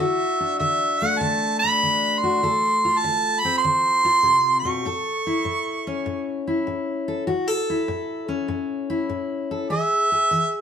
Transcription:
0.00 0.55 D3 medium
0.00 2.22 F#4 medium
0.00 0.58 E5 medium
0.40 1.61 D4 medium
0.59 1.16 D3 medium
0.59 1.01 E5 medium
1.00 3.44 A3 medium
1.00 1.20 F#5 medium
1.18 1.77 D3 medium
1.18 1.59 A5 loud
1.59 2.20 B5 loud
1.64 2.40 D4 medium
1.83 2.38 D3 medium
2.19 3.00 C6 loud
2.24 2.42 F#4 medium
2.43 2.99 D3 medium
2.43 4.86 A4 medium
2.85 4.04 F4 medium
2.98 3.41 A5 loud
3.04 3.59 D3 medium
3.39 3.58 B5 loud
3.45 4.83 C4 medium
3.58 4.58 C6 loud
3.64 4.20 D3 medium
4.05 4.82 F4 medium
4.23 4.64 C3 medium
4.59 6.40 C#6 loud
4.65 4.84 B2 medium
4.85 5.41 A2 medium
4.85 7.07 A4 medium
5.27 6.47 E4 medium
5.45 6.02 A2 medium
5.87 7.26 C#4 medium
6.06 6.63 A2 medium
6.47 7.30 E4 medium
6.67 7.23 A2 medium
7.08 7.25 A4 medium
7.27 7.84 A2 medium
7.27 7.48 F#4 medium
7.48 9.50 A4 medium
7.70 8.89 E4 medium
7.88 8.45 A2 medium
8.28 9.68 C#4 medium
8.48 9.06 A2 medium
8.90 9.68 E4 medium
9.09 9.67 A2 medium
9.51 9.68 A4 medium
9.70 10.27 E3 medium
9.70 10.11 G#4 medium
9.70 10.61 E5 loud
10.12 10.61 G#4 medium
10.31 10.61 E3 medium

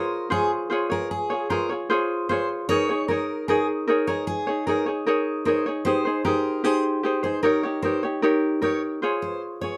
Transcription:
0.00 0.30 F4 medium
0.00 0.30 G#4 medium
0.00 0.30 A#4 medium
0.00 0.29 C5 medium
0.00 0.31 C#5 medium
0.30 0.70 F4 medium
0.30 0.70 G#4 medium
0.30 0.50 G#4 medium
0.30 0.68 C5 medium
0.30 0.71 C#5 medium
0.70 0.91 F4 medium
0.70 0.90 G#4 medium
0.70 0.90 C5 medium
0.70 0.89 C#5 medium
0.90 1.31 F4 soft
0.90 1.30 G#4 soft
0.90 1.10 A#4 medium
0.90 1.29 C#5 medium
1.11 1.48 G#4 medium
1.30 1.50 F4 medium
1.30 1.50 G#4 medium
1.30 1.50 C#5 medium
1.50 1.70 F4 medium
1.50 1.70 G#4 medium
1.50 1.69 A#4 medium
1.50 1.69 C5 medium
1.50 1.68 C#5 medium
1.69 1.89 F4 soft
1.69 1.90 G#4 soft
1.69 1.89 C#5 medium
1.90 2.29 F4 medium
1.90 2.30 G#4 medium
1.90 2.28 C5 medium
1.90 2.30 C#5 medium
2.29 2.69 F4 medium
2.29 2.70 G#4 medium
2.29 2.69 C5 medium
2.29 2.48 C5 medium
2.29 2.70 C#5 medium
2.69 2.89 D#4 medium
2.69 2.89 G#4 medium
2.69 2.89 A#4 medium
2.69 3.06 C#5 loud
2.69 2.88 C#5 medium
2.89 3.08 D#4 soft
2.89 3.09 G#4 medium
2.89 3.08 C#5 medium
3.08 3.48 D#4 medium
3.08 3.49 G#4 medium
3.08 3.48 A#4 medium
3.08 3.46 A#4 medium
3.08 3.49 C#5 medium
3.48 3.87 D#4 medium
3.48 3.67 G#4 medium
3.48 3.88 G#4 medium
3.48 3.86 A#4 medium
3.48 3.89 C#5 medium
3.88 4.07 D#4 medium
3.88 4.08 G#4 medium
3.88 4.07 A#4 medium
3.88 4.06 C#5 medium
4.07 4.48 D#4 soft
4.07 4.47 G#4 soft
4.07 4.26 A#4 medium
4.07 4.46 C#5 medium
4.27 4.64 G#4 medium
4.47 4.67 D#4 soft
4.47 4.67 G#4 soft
4.47 4.66 C#5 medium
4.67 4.87 D#4 medium
4.67 4.86 G#4 medium
4.67 4.86 A#4 medium
4.67 4.85 A#4 medium
4.67 4.85 C#5 medium
4.86 5.06 D#4 soft
4.86 5.07 G#4 soft
4.86 5.06 C#5 medium
5.06 5.45 D#4 medium
5.06 5.46 G#4 medium
5.06 5.45 A#4 medium
5.06 5.47 C#5 loud
5.45 5.66 D#4 medium
5.45 5.66 G#4 medium
5.45 5.66 A#4 medium
5.45 5.64 C5 medium
5.45 5.65 C#5 medium
5.66 5.85 D#4 soft
5.66 5.86 G#4 medium
5.66 5.85 C#5 medium
5.85 6.06 D#4 medium
5.85 6.05 G4 medium
5.85 6.05 G#4 medium
5.85 6.23 C5 loud
5.85 6.04 C5 medium
6.05 6.25 D#4 medium
6.05 6.26 G#4 soft
6.05 6.25 C5 medium
6.25 6.63 D#4 medium
6.25 6.63 G4 medium
6.25 6.64 G#4 medium
6.25 6.64 A#4 medium
6.25 6.65 C5 medium
6.64 7.03 D#4 medium
6.64 7.02 G4 medium
6.64 6.83 G#4 medium
6.64 7.04 G#4 medium
6.64 7.05 C5 loud
7.03 7.24 D#4 medium
7.03 7.23 G4 medium
7.03 7.23 G#4 medium
7.03 7.22 C5 medium
7.23 7.42 D#4 soft
7.23 7.44 G#4 medium
7.23 7.43 C5 soft
7.23 7.42 C5 medium
7.43 7.63 D#4 medium
7.43 7.63 G4 medium
7.43 7.81 A#4 medium
7.43 7.63 A#4 medium
7.43 7.62 C#5 medium
7.63 7.83 D#4 medium
7.63 7.84 G4 soft
7.63 7.83 C#5 medium
7.82 8.04 D#4 medium
7.82 8.03 G4 medium
7.82 8.03 A#4 medium
7.82 8.02 C5 medium
7.82 8.02 C#5 medium
8.03 8.22 D#4 soft
8.03 8.22 G4 medium
8.03 8.23 C#5 medium
8.22 8.62 D#4 medium
8.22 8.62 G4 medium
8.22 8.60 A#4 medium
8.22 8.63 C#5 loud
8.62 9.02 D#4 medium
8.62 9.03 G4 medium
8.62 9.02 A#4 medium
8.62 8.81 C#5 medium
8.62 9.03 C#5 medium
9.02 9.62 F4 medium
9.02 9.62 G#4 medium
9.02 9.62 C5 medium
9.02 9.60 C#5 medium
9.22 9.41 C5 medium
9.61 9.77 F4 soft
9.61 9.77 G#4 soft
9.61 9.77 C#5 medium
9.61 9.77 C#5 soft

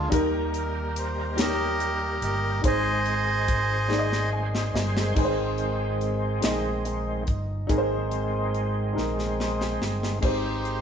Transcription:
0.00 0.14 G#3 medium
0.00 0.14 A#3 medium
0.00 0.14 C4 soft
0.00 0.14 D4 medium
0.00 0.14 F4 medium
0.00 0.13 A#4 medium
0.10 2.18 D#2 medium
0.10 1.33 D#3 medium
0.10 5.12 D#3 medium
0.10 2.62 G3 medium
0.10 2.62 A#3 medium
0.10 1.11 D#4 medium
0.10 1.12 G4 medium
0.10 2.61 G4 medium
0.10 2.62 A#4 medium
0.10 1.13 A#4 loud
0.10 kick medium
0.10 closed hi-hat medium
0.54 0.98 A#4 medium
0.54 closed hi-hat soft
0.96 1.40 C5 medium
0.96 closed hi-hat medium
1.35 2.37 D#4 medium
1.35 2.38 G4 medium
1.35 2.39 C#5 medium
1.35 snare loud
1.35 closed hi-hat medium
1.41 2.62 G4 medium
1.41 2.61 A#4 medium
1.41 2.02 D#5 loud
1.80 closed hi-hat medium
2.03 2.23 D#5 medium
2.22 2.60 G1 medium
2.22 2.62 D#5 medium
2.22 closed hi-hat medium
2.61 4.70 G#1 medium
2.61 3.86 G#2 medium
2.61 5.14 G#3 medium
2.61 5.14 C4 medium
2.61 3.63 D#4 medium
2.61 3.64 G#4 medium
2.61 5.14 G#4 medium
2.61 5.14 C5 medium
2.61 3.65 C5 medium
2.61 kick loud
2.61 closed hi-hat medium
2.67 4.30 C5 medium
2.67 4.30 D#5 medium
2.67 4.30 G#5 loud
3.06 closed hi-hat soft
3.48 kick medium
3.48 closed hi-hat medium
3.88 4.90 D#4 medium
3.88 4.91 G#4 medium
3.88 3.98 D5 medium
3.88 snare medium
3.98 4.73 D#5 medium
4.12 snare medium
4.33 4.72 G#5 medium
4.55 snare medium
4.74 5.13 G1 medium
4.74 5.13 D#5 medium
4.74 snare medium
4.97 snare medium
5.15 6.39 G#1 medium
5.15 6.39 G#2 medium
5.15 6.84 D#3 soft
5.15 6.85 G#3 soft
5.15 6.85 C4 medium
5.15 6.16 D#4 medium
5.15 6.17 G#4 medium
5.15 5.24 B4 medium
5.15 kick medium
5.15 crash medium
5.25 6.21 C5 medium
5.58 closed hi-hat soft
6.01 closed hi-hat soft
6.41 7.23 A#1 medium
6.41 7.43 D#4 medium
6.41 7.43 G#4 medium
6.41 7.44 D#5 medium
6.41 snare loud
6.41 closed hi-hat medium
6.85 7.23 D#3 soft
6.85 7.24 G#3 soft
6.85 7.24 C4 soft
6.85 closed hi-hat soft
7.27 7.66 G1 medium
7.27 kick medium
7.27 closed hi-hat soft
7.67 8.92 G#1 medium
7.67 8.92 G#2 medium
7.67 10.18 D#3 soft
7.67 10.19 G#3 soft
7.67 10.19 C4 soft
7.67 8.69 D#4 medium
7.67 8.70 G#4 medium
7.67 7.77 A#4 medium
7.67 kick medium
7.67 closed hi-hat medium
7.78 8.74 C5 medium
8.11 closed hi-hat soft
8.54 closed hi-hat soft
8.93 9.76 A#1 medium
8.93 9.96 D#4 medium
8.93 9.96 G#4 medium
8.93 9.97 A#4 medium
8.98 snare soft
9.19 snare soft
9.40 snare medium
9.61 snare medium
9.81 10.19 G1 medium
9.81 snare medium
10.03 snare medium
10.21 10.81 G#1 medium
10.21 10.81 G#2 soft
10.21 10.81 D#3 medium
10.21 10.81 G#3 medium
10.21 10.81 G#3 soft
10.21 10.81 C4 soft
10.21 10.81 D#4 medium
10.21 10.81 G4 soft
10.21 10.81 G4 medium
10.21 10.81 C5 medium
10.21 kick medium
10.21 crash medium
10.25 10.81 D#4 medium
10.25 10.81 G4 medium
10.25 10.81 C5 medium
10.65 closed hi-hat soft

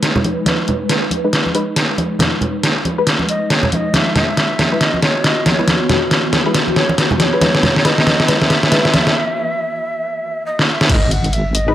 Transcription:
0.00 3.90 G#3 medium
0.00 3.90 D#4 medium
0.00 3.90 B4 medium
0.00 snare medium
0.00 closed hi-hat medium
0.16 low conga loud
0.24 closed hi-hat medium
0.24 high conga medium
0.46 snare medium
0.46 closed hi-hat medium
0.46 high conga medium
0.68 closed hi-hat medium
0.68 low conga medium
0.89 snare medium
0.89 closed hi-hat medium
1.11 closed hi-hat medium
1.11 high conga medium
1.24 1.42 G#3 medium
1.24 1.42 D#4 medium
1.24 1.42 B4 medium
1.33 snare medium
1.33 closed hi-hat medium
1.46 high conga medium
1.55 1.74 G#3 medium
1.55 1.74 D#4 medium
1.55 1.74 B4 loud
1.55 closed hi-hat medium
1.76 snare medium
1.76 closed hi-hat medium
1.98 closed hi-hat medium
1.98 high conga medium
2.19 snare medium
2.19 closed hi-hat medium
2.19 high conga medium
2.19 low conga medium
2.41 closed hi-hat medium
2.41 low conga medium
2.63 snare medium
2.63 closed hi-hat medium
2.85 closed hi-hat medium
2.85 high conga medium
2.98 3.08 G#3 medium
2.98 3.08 D#4 medium
2.98 3.08 B4 medium
3.07 snare medium
3.07 closed hi-hat medium
3.19 high conga medium
3.29 3.52 D#5 loud
3.29 closed hi-hat medium
3.50 3.72 C#5 loud
3.50 snare medium
3.50 closed hi-hat medium
3.63 low conga medium
3.72 3.77 E5 medium
3.72 closed hi-hat medium
3.72 high conga medium
3.76 3.96 D#5 loud
3.94 9.12 E3 medium
3.94 7.38 B3 medium
3.94 9.12 F#4 medium
3.94 4.15 E5 loud
3.94 snare medium
3.94 closed hi-hat medium
3.94 high conga medium
4.16 4.83 E5 loud
4.16 snare medium
4.16 closed hi-hat soft
4.16 low conga medium
4.37 snare medium
4.37 closed hi-hat medium
4.59 snare medium
4.59 closed hi-hat medium
4.59 high conga medium
4.72 4.80 G#3 medium
4.72 4.80 E4 medium
4.72 4.80 B4 medium
4.81 5.02 D#5 loud
4.81 snare medium
4.81 closed hi-hat medium
4.94 high conga medium
5.02 5.26 C#5 medium
5.02 snare medium
5.02 closed hi-hat medium
5.02 muted conga medium
5.24 5.46 D#5 loud
5.24 snare medium
5.24 closed hi-hat medium
5.46 5.51 D#5 medium
5.46 snare medium
5.46 open hi-hat medium
5.46 high conga medium
5.50 6.11 C#5 medium
5.59 5.66 G#3 medium
5.59 5.66 E4 medium
5.59 5.66 B4 medium
5.59 muted conga soft
5.67 snare medium
5.67 closed hi-hat medium
5.67 high conga medium
5.89 snare medium
5.89 closed hi-hat soft
5.89 low conga medium
6.11 snare medium
6.11 closed hi-hat medium
6.33 snare medium
6.33 closed hi-hat medium
6.33 high conga medium
6.46 6.53 G#3 medium
6.46 6.53 E4 medium
6.46 6.53 B4 medium
6.54 snare medium
6.54 closed hi-hat medium
6.68 high conga medium
6.76 6.97 C#5 medium
6.76 snare medium
6.76 closed hi-hat medium
6.89 muted conga medium
6.98 7.05 B4 medium
6.98 snare medium
6.98 closed hi-hat medium
7.11 low conga medium
7.20 7.25 D#5 loud
7.20 snare medium
7.20 open hi-hat medium
7.20 high conga medium
7.24 7.87 C#5 loud
7.33 7.40 G#3 medium
7.33 7.40 E4 medium
7.33 7.40 B4 medium
7.41 7.61 G#3 medium
7.41 9.14 A#3 medium
7.41 7.61 E4 medium
7.41 7.61 B4 medium
7.41 snare medium
7.41 closed hi-hat medium
7.41 high conga medium
7.55 snare medium
7.63 snare medium
7.63 closed hi-hat medium
7.63 low conga medium
7.76 snare medium
7.85 8.05 G#3 medium
7.85 8.04 E4 medium
7.85 8.04 B4 medium
7.85 8.30 D#5 loud
7.85 snare medium
7.85 closed hi-hat medium
7.98 snare medium
8.07 snare loud
8.07 closed hi-hat medium
8.07 high conga medium
8.20 snare medium
8.28 8.48 G#3 medium
8.28 8.48 E4 medium
8.28 8.48 B4 medium
8.28 10.46 E5 loud
8.28 snare loud
8.28 closed hi-hat medium
8.41 snare medium
8.41 high conga medium
8.50 snare loud
8.50 closed hi-hat medium
8.50 muted conga medium
8.63 snare medium
8.72 8.91 G#3 medium
8.72 8.91 E4 medium
8.72 8.91 B4 medium
8.72 snare loud
8.72 closed hi-hat medium
8.85 snare medium
8.94 snare loud
8.94 open hi-hat loud
8.94 high conga medium
9.07 snare medium
9.07 muted conga soft
10.46 10.66 D#5 loud
10.59 snare medium
10.68 10.74 F#5 medium
10.73 10.90 E5 loud
10.81 snare loud
10.89 11.75 G#1 loud
10.89 11.75 G#3 medium
10.89 11.75 D#4 medium
10.89 11.75 A#4 medium
10.89 11.13 D#5 loud
10.89 10.94 E5 loud
10.89 kick loud
10.89 closed hi-hat medium
10.89 crash loud
10.89 impact medium
11.11 11.35 F#5 loud
11.11 closed hi-hat medium
11.24 closed hi-hat soft
11.33 11.57 E5 loud
11.33 closed hi-hat medium
11.55 11.75 D#5 loud
11.55 closed hi-hat medium
11.68 11.75 G#3 medium
11.68 11.75 D#4 medium
11.68 11.75 B4 medium

